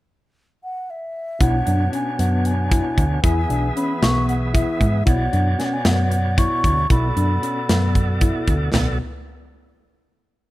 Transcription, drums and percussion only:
1.41 kick, closed hi-hat
1.67 closed hi-hat
1.93 closed hi-hat
2.19 closed hi-hat
2.45 closed hi-hat
2.72 kick, closed hi-hat
2.98 kick, closed hi-hat
3.24 kick, closed hi-hat
3.50 closed hi-hat
3.77 closed hi-hat
4.03 snare, closed hi-hat
4.29 closed hi-hat
4.55 kick, closed hi-hat
4.81 kick, closed hi-hat
5.07 kick, closed hi-hat
5.33 closed hi-hat
5.60 snare, closed hi-hat
5.85 snare, closed hi-hat
6.12 closed hi-hat
6.38 kick, closed hi-hat
6.64 kick, closed hi-hat
6.90 kick, closed hi-hat
7.17 closed hi-hat
7.43 closed hi-hat
7.69 snare, closed hi-hat
7.95 kick, closed hi-hat
8.21 kick, closed hi-hat
8.47 kick, closed hi-hat
8.74 snare, floor tom, crash

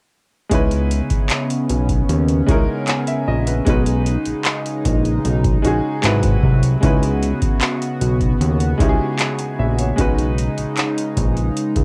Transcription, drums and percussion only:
0.51 kick, closed hi-hat
0.71 closed hi-hat
0.91 closed hi-hat
1.10 kick, closed hi-hat
1.30 clap, closed hi-hat
1.50 closed hi-hat
1.70 closed hi-hat
1.89 kick, closed hi-hat
2.09 closed hi-hat
2.29 closed hi-hat
2.48 kick, closed hi-hat
2.88 clap, closed hi-hat
3.07 closed hi-hat
3.47 closed hi-hat
3.67 kick, closed hi-hat
3.86 closed hi-hat
4.06 closed hi-hat
4.26 closed hi-hat
4.45 clap, closed hi-hat
4.66 closed hi-hat
4.85 kick, closed hi-hat
5.05 closed hi-hat
5.25 closed hi-hat
5.44 kick, closed hi-hat
5.65 closed hi-hat
6.03 clap, closed hi-hat
6.23 kick, closed hi-hat
6.43 kick
6.63 closed hi-hat
6.83 kick, closed hi-hat
7.03 closed hi-hat
7.22 closed hi-hat
7.42 kick, closed hi-hat
7.61 clap, closed hi-hat
7.82 closed hi-hat
8.01 closed hi-hat
8.21 kick, closed hi-hat
8.41 closed hi-hat
8.60 closed hi-hat
8.80 kick, closed hi-hat
9.19 clap, closed hi-hat
9.39 closed hi-hat
9.79 closed hi-hat
9.98 kick, closed hi-hat
10.18 closed hi-hat
10.38 closed hi-hat
10.58 closed hi-hat
10.77 clap, closed hi-hat
10.98 closed hi-hat
11.17 kick, closed hi-hat
11.37 closed hi-hat
11.57 closed hi-hat
11.76 kick, closed hi-hat

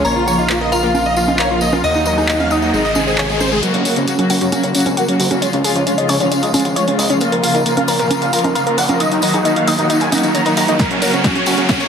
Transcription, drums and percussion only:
0.05 tambourine
0.28 tambourine
0.39 tambourine
0.49 clap, tambourine
0.72 tambourine
0.83 tambourine
0.94 tambourine, high conga
1.05 tambourine
1.16 tambourine
1.28 tambourine, high conga
1.39 clap, tambourine
1.61 tambourine
1.72 tambourine, high conga
1.84 tambourine
1.94 tambourine
2.06 tambourine
2.18 tambourine
2.29 clap, tambourine
2.40 tambourine, high conga
2.51 tambourine
2.62 tambourine
2.74 tambourine
2.85 tambourine
2.95 tambourine, high conga
3.07 tambourine
3.18 clap, tambourine
3.29 tambourine
3.40 tambourine, high conga
3.52 tambourine
3.63 closed hi-hat, tambourine
3.74 closed hi-hat
3.85 open hi-hat, tambourine
3.96 closed hi-hat, tambourine
4.07 closed hi-hat, tambourine
4.19 closed hi-hat, high conga
4.30 open hi-hat, tambourine
4.41 closed hi-hat, tambourine
4.52 closed hi-hat, tambourine, high conga
4.63 closed hi-hat, tambourine
4.75 open hi-hat, tambourine
4.80 closed hi-hat
4.86 closed hi-hat, tambourine, high conga
4.97 closed hi-hat, tambourine
5.08 closed hi-hat
5.20 open hi-hat, tambourine
5.31 closed hi-hat, tambourine, high conga
5.42 closed hi-hat, tambourine
5.53 closed hi-hat
5.64 open hi-hat, tambourine
5.75 closed hi-hat, tambourine
5.87 closed hi-hat, tambourine
5.98 closed hi-hat
6.09 open hi-hat, tambourine
6.20 closed hi-hat, tambourine
6.32 closed hi-hat, tambourine
6.43 closed hi-hat, tambourine
6.54 open hi-hat, tambourine, high conga
6.60 closed hi-hat
6.65 closed hi-hat, tambourine
6.76 closed hi-hat, tambourine
6.88 closed hi-hat
6.99 open hi-hat, tambourine
7.10 closed hi-hat, tambourine
7.20 closed hi-hat, tambourine
7.32 closed hi-hat
7.43 open hi-hat, tambourine
7.55 closed hi-hat, tambourine
7.66 closed hi-hat, tambourine
7.77 closed hi-hat, high conga
7.88 open hi-hat, tambourine
7.99 closed hi-hat, tambourine
8.11 closed hi-hat, tambourine, high conga
8.22 closed hi-hat, tambourine
8.33 open hi-hat, tambourine
8.39 closed hi-hat
8.44 closed hi-hat, tambourine, high conga
8.55 closed hi-hat, tambourine
8.67 closed hi-hat
8.78 open hi-hat, tambourine
8.89 closed hi-hat, tambourine, high conga
9.00 closed hi-hat, tambourine
9.12 closed hi-hat, tambourine
9.22 open hi-hat, tambourine
9.34 closed hi-hat, tambourine
9.45 closed hi-hat, tambourine
9.56 closed hi-hat
9.67 open hi-hat, tambourine
9.78 closed hi-hat, tambourine
9.90 closed hi-hat, tambourine
10.00 closed hi-hat, tambourine
10.12 open hi-hat, tambourine, high conga
10.18 closed hi-hat
10.23 closed hi-hat, tambourine
10.35 closed hi-hat, tambourine
10.46 closed hi-hat, tambourine
10.57 open hi-hat, tambourine
10.68 closed hi-hat, tambourine
10.79 kick, snare, closed hi-hat, tambourine
10.91 closed hi-hat
11.02 open hi-hat, tambourine
11.13 closed hi-hat, tambourine
11.24 kick, snare, closed hi-hat, tambourine
11.36 closed hi-hat, high conga
11.46 open hi-hat, tambourine
11.57 closed hi-hat, tambourine
11.69 kick, snare, closed hi-hat, tambourine, high conga
11.80 closed hi-hat, tambourine

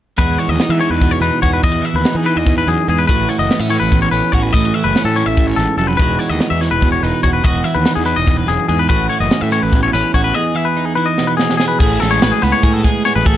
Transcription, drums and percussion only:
0.19 kick, closed hi-hat
0.39 closed hi-hat
0.60 snare, closed hi-hat
0.81 closed hi-hat
1.01 kick, closed hi-hat
1.23 closed hi-hat
1.43 kick, closed hi-hat
1.63 kick, closed hi-hat
1.85 closed hi-hat
2.05 snare, closed hi-hat
2.26 closed hi-hat
2.47 kick, snare, closed hi-hat
2.68 closed hi-hat
2.88 closed hi-hat
3.09 kick, closed hi-hat
3.30 closed hi-hat
3.51 snare, closed hi-hat
3.71 closed hi-hat
3.92 kick, closed hi-hat
4.13 closed hi-hat
4.33 kick, closed hi-hat
4.54 kick, closed hi-hat
4.75 closed hi-hat
4.96 snare, closed hi-hat
5.17 closed hi-hat
5.37 kick, closed hi-hat
5.58 snare, closed hi-hat
5.79 closed hi-hat
6.00 kick, closed hi-hat
6.20 closed hi-hat
6.40 snare, closed hi-hat
6.62 snare, closed hi-hat
6.82 kick, closed hi-hat
7.03 closed hi-hat
7.24 kick, closed hi-hat
7.45 kick, closed hi-hat
7.65 closed hi-hat
7.85 snare, closed hi-hat
8.06 closed hi-hat
8.27 kick, snare, closed hi-hat
8.48 snare, closed hi-hat
8.69 closed hi-hat
8.90 kick, closed hi-hat
9.11 closed hi-hat
9.31 snare, closed hi-hat
9.52 closed hi-hat
9.72 kick, snare, closed hi-hat
9.94 snare, closed hi-hat
10.14 kick, closed hi-hat
11.18 snare
11.39 snare
11.50 snare
11.60 snare
11.80 kick, crash
12.01 snare, closed hi-hat
12.22 snare, closed hi-hat
12.43 closed hi-hat
12.63 kick, closed hi-hat
12.84 kick, snare, closed hi-hat
13.06 snare, closed hi-hat
13.26 kick, closed hi-hat

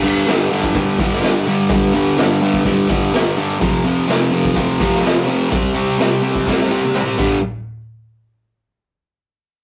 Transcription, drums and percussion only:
0.03 open hi-hat, shaker
0.27 snare, open hi-hat, shaker
0.51 snare, open hi-hat, shaker
0.63 kick
0.74 kick, open hi-hat, shaker
0.98 kick, open hi-hat, shaker
1.12 snare
1.22 snare, open hi-hat, shaker
1.45 open hi-hat, shaker
1.68 kick, open hi-hat, shaker
1.93 open hi-hat, shaker
2.17 snare, open hi-hat, shaker
2.41 open hi-hat, shaker
2.54 kick
2.65 kick, open hi-hat, shaker
2.89 kick, open hi-hat, shaker
3.13 snare, open hi-hat, shaker
3.37 open hi-hat, shaker
3.61 kick, open hi-hat, shaker
3.85 open hi-hat, shaker
4.09 snare, open hi-hat, shaker
4.32 open hi-hat
4.45 kick
4.56 kick, open hi-hat, shaker
4.79 kick, open hi-hat, shaker
4.94 snare
5.04 snare, open hi-hat, shaker
5.29 open hi-hat, shaker
5.52 kick, open hi-hat, shaker
5.75 open hi-hat, shaker
5.99 snare, open hi-hat, shaker
6.24 snare, open hi-hat, shaker
6.35 kick
6.46 kick, snare, shaker
6.60 snare
6.70 shaker
6.83 high tom
6.94 mid tom, shaker
7.18 kick, crash, shaker

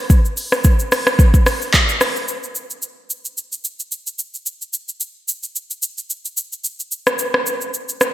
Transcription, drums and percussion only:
0.10 kick, shaker
0.25 shaker
0.37 open hi-hat, shaker
0.52 cross-stick, shaker
0.64 kick, shaker
0.79 shaker
0.92 cross-stick, open hi-hat, shaker
1.07 cross-stick, shaker
1.19 kick, shaker
1.34 kick, shaker
1.46 cross-stick, open hi-hat, shaker
1.62 shaker
1.74 kick, clap, shaker
1.89 shaker
2.01 cross-stick, open hi-hat, shaker
2.16 shaker
2.28 shaker
2.44 shaker
2.55 shaker
2.70 shaker
2.82 shaker
3.10 shaker
3.25 shaker
3.38 shaker
3.52 shaker
3.64 shaker
3.80 shaker
3.92 shaker
4.07 shaker
4.19 shaker
4.34 shaker
4.46 shaker
4.62 shaker
4.73 shaker
4.89 shaker
5.00 shaker
5.28 shaker
5.43 shaker
5.56 shaker
5.71 shaker
5.83 shaker
5.98 shaker
6.10 shaker
6.25 shaker
6.37 shaker
6.53 shaker
6.64 shaker
6.80 shaker
6.92 shaker
7.07 cross-stick, shaker
7.19 shaker
7.34 cross-stick
7.46 shaker
7.61 shaker
7.74 shaker
7.89 shaker
8.01 cross-stick, shaker

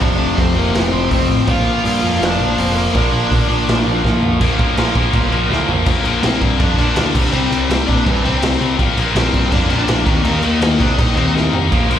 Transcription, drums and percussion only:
0.02 kick, open hi-hat
0.38 kick, open hi-hat
0.75 snare, open hi-hat
1.11 kick, open hi-hat
1.47 kick, open hi-hat
1.85 open hi-hat
2.22 snare, open hi-hat
2.58 open hi-hat
2.95 kick, open hi-hat
3.32 kick, open hi-hat
3.68 snare, open hi-hat
4.05 kick, snare
4.23 floor tom
4.41 kick, crash
4.59 kick, crash
4.77 snare, crash
4.95 kick, crash
5.13 kick, crash
5.32 crash
5.52 snare
5.69 floor tom
5.86 kick, crash
6.05 crash
6.23 snare, crash
6.42 kick, crash
6.60 kick, crash
6.78 crash
6.96 snare, crash
7.15 kick, crash
7.33 crash
7.52 crash
7.70 snare, crash
7.88 kick, crash
8.06 kick, crash
8.26 crash
8.42 snare, crash
8.62 crash
8.79 kick, crash
8.97 crash
9.16 snare, crash
9.34 kick, crash
9.52 kick, crash
9.70 crash
9.88 snare, crash
10.07 kick, crash
10.25 crash
10.43 crash
10.62 snare, crash
10.80 kick, crash
10.99 kick, crash
11.17 crash
11.36 snare
11.53 floor tom
11.72 kick, splash, crash
11.91 crash

